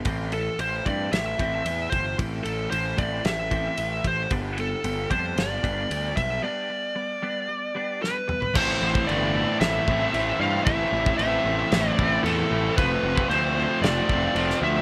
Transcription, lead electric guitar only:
0.33 A4
0.61 C5
0.86 D5
1.13 E5
1.90 C5
2.44 A4
2.71 C5
2.98 D5
3.26 E5
4.07 C5
4.60 A4
5.11 C5
5.39 D5
6.17 E5
6.43 D5
8.02 B4
8.56 C5
9.07 D5
9.60 E5
10.41 F5
10.65 E5
11.18 E5
11.89 D5
12.24 A4
12.77 B4
13.30 C5
13.82 D5
14.63 E5

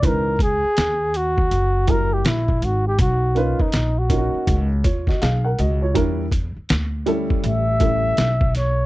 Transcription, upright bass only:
0.03 C#2
0.64 muted upright bass stroke
0.78 D#2
1.51 F#1
2.25 A#1
2.62 G#1
2.99 B1
3.60 muted upright bass stroke
3.74 A#1
4.34 muted upright bass stroke
4.47 C#2
4.85 D#2
5.22 B1
5.59 C#2
6.56 muted upright bass stroke
6.70 D2
7.30 muted upright bass stroke
7.44 A1
8.18 B1

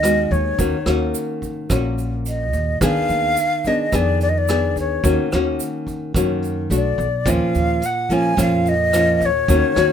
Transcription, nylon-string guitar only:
Already playing: D#3
0.03 G#3 B3 F#4
0.59 D#3 A#3 C#4 F#4
0.86 A#3 C#4 F#4
1.71 A#2 A#3 C#4 F#4
2.81 D#3 B3 D4 G#4
3.67 B3 D4 G#4
3.93 D#3 B3 D4 G#4
4.49 B3 D4 G#4
5.04 D#3 A#3 C#4 F#4
5.34 A#3 C#4 F#4
6.16 D#3 A#3 C#4 F#4
6.71 A3 D4 F#4
7.26 A#2 F3 A#3 C#4 F4
8.10 F3 A#3 C#4 F4
8.37 A#2 F3 A#3 C#4 F4
8.95 F3 A#3 C#4 F4
9.49 D#3 A#3 C#4 F#4
9.77 A#3 C#4 F#4

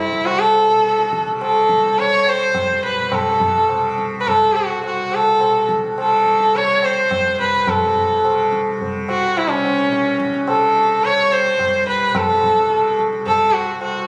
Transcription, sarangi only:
Already playing: E4
0.25 F#4
0.39 A4
1.42 A4
1.99 C#5
2.28 C5
2.85 B4
3.13 A4
4.21 B4
4.28 A4
4.55 F#4
4.86 F#4
5.15 A4
6.01 A4
6.56 C#5
6.84 C5
7.41 B4
7.69 A4
9.10 F#4
9.37 E4
9.50 C#4
10.49 A4
11.04 C#5
11.33 C5
11.89 B4
12.17 A4
13.27 A4
13.53 F#4
13.81 F#4

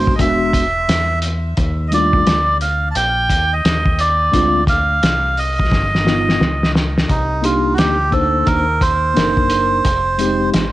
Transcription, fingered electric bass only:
Already playing: G1
0.20 E1
0.88 E2
1.58 D#2
2.26 D2
2.95 A#1
3.30 D#2
3.65 D#2
4.34 D2
5.03 C2
5.72 G1
6.41 C#2
7.10 C2
7.78 D2
8.47 D#2
9.16 F#1
9.85 F1
10.54 G#1

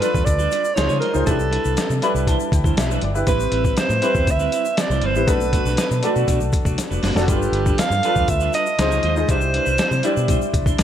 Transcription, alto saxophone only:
Already playing: B4
0.25 D5
0.74 C#5
1.00 A#4
1.26 A4
3.28 B4
3.79 C5
4.31 E5
4.81 D5
5.06 C5
5.30 B4
7.22 F#4
7.29 G4
7.80 F5
8.30 E5
8.55 D#5
9.31 C5

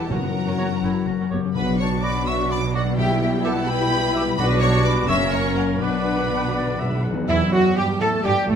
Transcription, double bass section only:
0.11 F#1
0.59 F#1
0.83 F#1
1.07 F#1
1.32 F#1
1.56 B1
4.38 B1
5.08 F#1
5.81 B1
7.28 E2
7.52 F#2
7.77 G2
8.01 A2
8.25 G2
8.50 A1

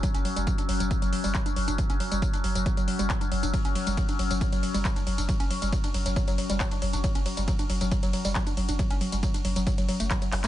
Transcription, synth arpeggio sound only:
0.03 F#3
0.15 C#4
0.25 F#3
0.36 G3
0.47 F#3
0.58 D4
0.69 F#3
0.80 F#3
0.91 F#3
1.02 F#3
1.13 F#3
1.24 G3
1.35 F#3
1.46 D4
1.56 F#3
1.68 D4
1.78 F#3
1.90 C#4
2.00 F#3
2.12 G3
2.22 F#3
2.34 D4
2.44 F#3
2.55 F#3
2.66 F#3
2.77 F#3
2.88 F#3
2.99 G3
3.10 F#3
3.21 D4
3.32 F#3
3.43 D4
3.54 F#3
3.65 C#4
3.75 F#3
3.87 G3
3.97 F#3
4.09 D4
4.19 F#3
4.31 F#3
4.41 F#3
4.53 F#3
4.63 F#3
4.74 G3
4.85 F#3
4.96 D4
5.07 F#3
5.18 D4
5.29 F#3
5.40 C#4
5.51 F#3
5.62 G3
5.72 F#3
5.84 D4
5.94 F#3
6.06 F#3
6.16 F#3
6.28 F#3
6.38 F#3
6.50 G3
6.60 F#3
6.72 D4
6.82 F#3
6.93 D4
7.04 F#3
7.15 C#4
7.26 F#3
7.37 G3
7.48 F#3
7.59 D4
7.70 F#3
7.81 F#3
7.92 F#3
8.03 F#3
8.13 F#3
8.25 G3
8.35 F#3
8.47 D4
8.57 F#3
8.69 D4
8.79 F#3
8.90 C#4
9.01 F#3
9.12 G3
9.23 F#3
9.34 D4
9.45 F#3
9.56 F#3
9.67 F#3
9.78 F#3
9.89 F#3
10.00 A3
10.11 F#3
10.22 F#3
10.32 F#3
10.44 A3

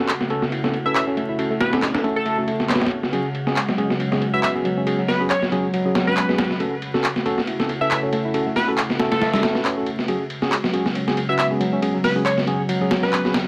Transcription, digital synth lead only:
0.86 E5
0.96 E5
1.61 B4
2.16 A4
4.33 E5
4.44 E5
5.08 B4
5.30 C#5
6.07 B4
7.81 E5
7.91 E5
8.56 B4
9.11 A4
11.29 E5
11.39 E5
12.04 B4
12.25 C#5
13.03 B4

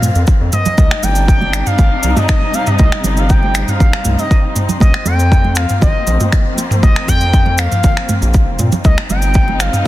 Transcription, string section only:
Already playing: F3 A#3 C4
0.78 C3 G3 D4 D#4
2.79 C4
4.81 F3 A#3
8.85 C3 G3 C4 D#4

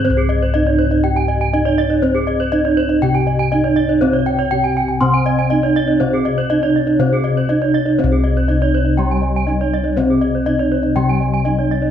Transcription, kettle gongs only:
Already playing: G#2
0.05 C4
0.10 C2
0.54 C#4
1.53 C#4
2.03 C4
2.53 C#4
3.03 C3
3.52 C#4
4.02 C4
4.53 C#4
5.02 C3
5.51 C#4
6.00 C4
6.50 C#4
7.00 C3
7.49 C#4
7.99 C4
8.04 C2
8.50 C#4
9.48 C#4
9.97 C4
10.47 C#4
10.96 C3
11.46 C#4

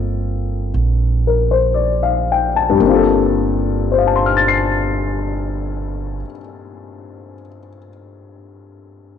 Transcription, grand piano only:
Already playing: A#3 C4 F4 A4 D#5
1.27 A#4
1.51 C5
1.74 D5
2.03 F5
2.32 G5
2.56 A5
2.70 G2
2.75 G3
2.80 A#3
2.85 C4
2.90 F4
2.94 A4
3.92 C5
3.98 F5
4.07 A5
4.16 C6
4.26 F6
4.37 A6
4.48 C7

